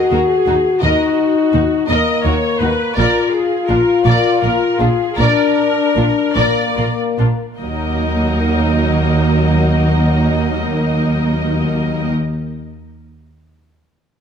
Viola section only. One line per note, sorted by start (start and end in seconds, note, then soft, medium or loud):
0.00 0.82 G#4 soft
0.82 1.86 F#4 soft
1.88 2.24 D#5 soft
2.24 2.60 C#5 soft
2.60 2.97 B4 soft
2.97 3.32 A#4 soft
3.32 3.69 G#4 soft
3.68 4.05 A#4 soft
4.05 4.41 D5 soft
4.42 4.79 A#4 soft
4.79 5.17 G#4 soft
5.17 6.36 A#4 soft
6.35 6.97 D5 soft
7.59 12.10 A#3 soft
7.59 12.09 D#4 soft